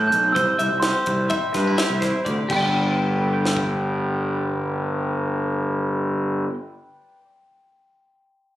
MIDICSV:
0, 0, Header, 1, 6, 480
1, 0, Start_track
1, 0, Key_signature, 1, "major"
1, 0, Tempo, 473934
1, 359, Time_signature, 9, 3, 24, 8
1, 8670, End_track
2, 0, Start_track
2, 0, Title_t, "Glockenspiel"
2, 0, Program_c, 0, 9
2, 76, Note_on_c, 0, 91, 78
2, 327, Note_on_c, 0, 88, 72
2, 346, Note_off_c, 0, 91, 0
2, 789, Note_off_c, 0, 88, 0
2, 808, Note_on_c, 0, 84, 58
2, 1504, Note_off_c, 0, 84, 0
2, 2541, Note_on_c, 0, 79, 61
2, 6522, Note_off_c, 0, 79, 0
2, 8670, End_track
3, 0, Start_track
3, 0, Title_t, "Clean electric guitar"
3, 0, Program_c, 1, 27
3, 0, Note_on_c, 1, 69, 61
3, 351, Note_off_c, 1, 69, 0
3, 355, Note_on_c, 1, 72, 72
3, 592, Note_off_c, 1, 72, 0
3, 596, Note_on_c, 1, 76, 67
3, 829, Note_off_c, 1, 76, 0
3, 829, Note_on_c, 1, 72, 61
3, 1312, Note_off_c, 1, 72, 0
3, 1316, Note_on_c, 1, 76, 72
3, 1558, Note_off_c, 1, 76, 0
3, 1563, Note_on_c, 1, 71, 54
3, 1801, Note_on_c, 1, 76, 68
3, 1802, Note_off_c, 1, 71, 0
3, 2032, Note_on_c, 1, 72, 63
3, 2041, Note_off_c, 1, 76, 0
3, 2276, Note_off_c, 1, 72, 0
3, 2278, Note_on_c, 1, 74, 62
3, 2518, Note_on_c, 1, 67, 54
3, 2519, Note_off_c, 1, 74, 0
3, 2558, Note_off_c, 1, 67, 0
3, 2558, Note_on_c, 1, 71, 54
3, 2596, Note_on_c, 1, 74, 55
3, 2642, Note_on_c, 1, 79, 52
3, 6577, Note_off_c, 1, 74, 0
3, 6579, Note_off_c, 1, 71, 0
3, 6623, Note_off_c, 1, 79, 0
3, 8670, End_track
4, 0, Start_track
4, 0, Title_t, "Clean electric guitar"
4, 0, Program_c, 2, 27
4, 0, Note_on_c, 2, 45, 48
4, 0, Note_on_c, 2, 52, 52
4, 0, Note_on_c, 2, 60, 49
4, 0, Note_on_c, 2, 64, 48
4, 0, Note_on_c, 2, 67, 56
4, 118, Note_off_c, 2, 45, 0
4, 122, Note_on_c, 2, 47, 49
4, 328, Note_off_c, 2, 52, 0
4, 334, Note_off_c, 2, 64, 0
4, 342, Note_off_c, 2, 60, 0
4, 355, Note_off_c, 2, 47, 0
4, 360, Note_on_c, 2, 48, 60
4, 841, Note_off_c, 2, 67, 0
4, 853, Note_on_c, 2, 67, 58
4, 1080, Note_on_c, 2, 64, 47
4, 1317, Note_on_c, 2, 55, 53
4, 1553, Note_off_c, 2, 64, 0
4, 1557, Note_on_c, 2, 62, 47
4, 1694, Note_off_c, 2, 62, 0
4, 1694, Note_on_c, 2, 64, 39
4, 1807, Note_off_c, 2, 67, 0
4, 1819, Note_on_c, 2, 67, 54
4, 2036, Note_off_c, 2, 64, 0
4, 2048, Note_on_c, 2, 64, 44
4, 2273, Note_off_c, 2, 48, 0
4, 2285, Note_on_c, 2, 48, 57
4, 2490, Note_off_c, 2, 55, 0
4, 2494, Note_off_c, 2, 48, 0
4, 2496, Note_off_c, 2, 64, 0
4, 2535, Note_on_c, 2, 43, 50
4, 2587, Note_on_c, 2, 55, 50
4, 2636, Note_on_c, 2, 59, 48
4, 2730, Note_off_c, 2, 67, 0
4, 2734, Note_on_c, 2, 69, 45
4, 3244, Note_off_c, 2, 59, 0
4, 3248, Note_on_c, 2, 71, 51
4, 3311, Note_on_c, 2, 74, 54
4, 3368, Note_off_c, 2, 69, 0
4, 3372, Note_on_c, 2, 79, 54
4, 6557, Note_off_c, 2, 43, 0
4, 6609, Note_off_c, 2, 55, 0
4, 7270, Note_off_c, 2, 71, 0
4, 7333, Note_off_c, 2, 74, 0
4, 7394, Note_off_c, 2, 79, 0
4, 8670, End_track
5, 0, Start_track
5, 0, Title_t, "Fingered electric bass"
5, 0, Program_c, 3, 33
5, 121, Note_on_c, 3, 35, 72
5, 322, Note_off_c, 3, 35, 0
5, 371, Note_on_c, 3, 36, 87
5, 467, Note_off_c, 3, 36, 0
5, 609, Note_on_c, 3, 36, 69
5, 706, Note_off_c, 3, 36, 0
5, 730, Note_on_c, 3, 36, 67
5, 928, Note_off_c, 3, 36, 0
5, 1085, Note_on_c, 3, 36, 67
5, 1285, Note_off_c, 3, 36, 0
5, 1571, Note_on_c, 3, 43, 67
5, 1768, Note_off_c, 3, 43, 0
5, 1924, Note_on_c, 3, 36, 73
5, 2124, Note_off_c, 3, 36, 0
5, 2299, Note_on_c, 3, 38, 67
5, 2392, Note_off_c, 3, 38, 0
5, 2537, Note_on_c, 3, 31, 73
5, 6519, Note_off_c, 3, 31, 0
5, 8670, End_track
6, 0, Start_track
6, 0, Title_t, "Drums"
6, 125, Note_on_c, 9, 42, 46
6, 226, Note_off_c, 9, 42, 0
6, 366, Note_on_c, 9, 42, 67
6, 368, Note_on_c, 9, 36, 85
6, 467, Note_off_c, 9, 42, 0
6, 469, Note_off_c, 9, 36, 0
6, 602, Note_on_c, 9, 42, 48
6, 703, Note_off_c, 9, 42, 0
6, 835, Note_on_c, 9, 42, 63
6, 836, Note_on_c, 9, 38, 84
6, 936, Note_off_c, 9, 42, 0
6, 937, Note_off_c, 9, 38, 0
6, 1074, Note_on_c, 9, 42, 47
6, 1085, Note_on_c, 9, 36, 63
6, 1176, Note_off_c, 9, 42, 0
6, 1186, Note_off_c, 9, 36, 0
6, 1315, Note_on_c, 9, 42, 57
6, 1325, Note_on_c, 9, 36, 78
6, 1416, Note_off_c, 9, 42, 0
6, 1426, Note_off_c, 9, 36, 0
6, 1562, Note_on_c, 9, 42, 45
6, 1563, Note_on_c, 9, 38, 27
6, 1567, Note_on_c, 9, 36, 57
6, 1664, Note_off_c, 9, 42, 0
6, 1665, Note_off_c, 9, 38, 0
6, 1668, Note_off_c, 9, 36, 0
6, 1804, Note_on_c, 9, 42, 63
6, 1805, Note_on_c, 9, 38, 87
6, 1905, Note_off_c, 9, 42, 0
6, 1906, Note_off_c, 9, 38, 0
6, 2046, Note_on_c, 9, 42, 49
6, 2047, Note_on_c, 9, 38, 28
6, 2048, Note_on_c, 9, 36, 58
6, 2148, Note_off_c, 9, 42, 0
6, 2149, Note_off_c, 9, 36, 0
6, 2149, Note_off_c, 9, 38, 0
6, 2291, Note_on_c, 9, 36, 60
6, 2292, Note_on_c, 9, 42, 48
6, 2392, Note_off_c, 9, 36, 0
6, 2394, Note_off_c, 9, 42, 0
6, 2531, Note_on_c, 9, 36, 80
6, 2535, Note_on_c, 9, 49, 72
6, 2633, Note_off_c, 9, 36, 0
6, 2636, Note_off_c, 9, 49, 0
6, 3499, Note_on_c, 9, 38, 44
6, 3600, Note_off_c, 9, 38, 0
6, 3611, Note_on_c, 9, 36, 54
6, 3713, Note_off_c, 9, 36, 0
6, 8670, End_track
0, 0, End_of_file